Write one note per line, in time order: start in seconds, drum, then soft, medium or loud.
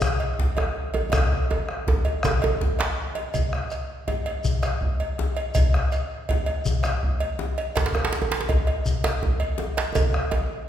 0.01 bombo rim loud
0.01 djembe bass medium
0.01 shekere medium
0.20 cowbell soft
0.20 djembe slap soft
0.39 bombo low medium
0.39 djembe slap medium
0.57 bombo rim medium
0.57 cowbell soft
0.57 djembe tone medium
0.76 djembe slap soft
0.94 bombo rim soft
0.94 cowbell soft
0.94 djembe tone medium
1.12 bombo rim loud
1.12 bombo low loud
1.12 cowbell medium
1.12 djembe slap medium
1.12 djembe tone medium
1.12 djembe bass medium
1.12 shekere medium
1.51 cowbell soft
1.51 djembe tone loud
1.69 bombo rim medium
1.87 bombo low loud
1.87 djembe slap medium
1.87 djembe tone loud
2.05 bombo rim soft
2.05 cowbell medium
2.05 djembe tone medium
2.23 bombo rim loud
2.23 djembe tone loud
2.23 djembe bass medium
2.23 shekere medium
2.42 cowbell soft
2.42 djembe tone loud
2.61 bombo low medium
2.61 djembe slap medium
2.79 bombo rim medium
2.79 cowbell soft
2.79 djembe slap soft
2.79 djembe slap loud
3.15 cowbell medium
3.15 djembe slap soft
3.15 djembe tone medium
3.34 bombo low medium
3.34 cowbell medium
3.34 djembe slap soft
3.34 djembe bass medium
3.34 shekere medium
3.53 bombo rim medium
3.53 djembe tone medium
3.71 bombo rim soft
3.71 cowbell soft
3.71 shekere soft
4.07 bombo low medium
4.07 cowbell soft
4.07 djembe slap medium
4.07 djembe tone medium
4.26 bombo rim soft
4.26 cowbell soft
4.44 bombo rim soft
4.44 djembe slap soft
4.44 djembe bass medium
4.44 shekere medium
4.63 bombo rim medium
4.63 cowbell soft
4.63 djembe tone medium
4.63 shekere soft
4.81 bombo low medium
5.00 cowbell soft
5.00 djembe slap soft
5.18 bombo rim soft
5.18 djembe slap medium
5.18 djembe tone medium
5.37 cowbell medium
5.55 bombo low loud
5.55 cowbell medium
5.55 djembe slap soft
5.55 djembe bass medium
5.55 shekere medium
5.74 bombo rim medium
5.74 djembe slap soft
5.74 djembe tone medium
5.92 bombo rim soft
5.92 cowbell soft
5.92 shekere soft
6.29 bombo low loud
6.29 cowbell medium
6.29 djembe slap medium
6.29 djembe tone medium
6.46 bombo rim soft
6.46 cowbell medium
6.65 bombo rim soft
6.65 djembe slap soft
6.65 djembe bass medium
6.65 shekere medium
6.83 bombo rim medium
6.83 cowbell soft
6.83 djembe slap medium
6.83 djembe tone medium
6.83 shekere soft
7.03 bombo low medium
7.20 cowbell medium
7.20 djembe slap soft
7.39 bombo rim soft
7.39 djembe slap medium
7.39 djembe tone medium
7.58 cowbell medium
7.76 bombo low loud
7.76 cowbell medium
7.76 djembe slap soft
7.76 djembe slap loud
7.76 djembe bass medium
7.76 shekere soft
7.86 djembe slap medium
7.94 bombo rim medium
7.94 djembe slap soft
7.94 djembe tone soft
7.94 djembe tone medium
8.05 djembe slap loud
8.13 bombo rim soft
8.13 djembe slap medium
8.13 shekere soft
8.22 djembe tone medium
8.32 djembe slap loud
8.41 djembe slap medium
8.49 bombo low medium
8.49 cowbell medium
8.49 djembe slap medium
8.49 djembe tone medium
8.67 bombo rim soft
8.67 cowbell medium
8.86 bombo rim soft
8.86 djembe slap soft
8.86 djembe bass medium
8.86 shekere medium
9.04 bombo rim medium
9.04 cowbell soft
9.04 djembe slap loud
9.04 djembe slap medium
9.04 djembe tone medium
9.04 shekere soft
9.22 bombo low medium
9.22 djembe tone medium
9.40 cowbell medium
9.40 djembe slap soft
9.58 bombo rim soft
9.58 djembe slap medium
9.58 djembe tone medium
9.77 cowbell medium
9.77 djembe slap loud
9.95 bombo rim soft
9.95 bombo low loud
9.95 cowbell medium
9.95 djembe slap soft
9.95 djembe tone loud
9.95 djembe bass medium
9.95 shekere soft
10.13 bombo rim medium
10.13 djembe tone soft
10.31 bombo rim soft
10.31 cowbell soft
10.31 djembe tone loud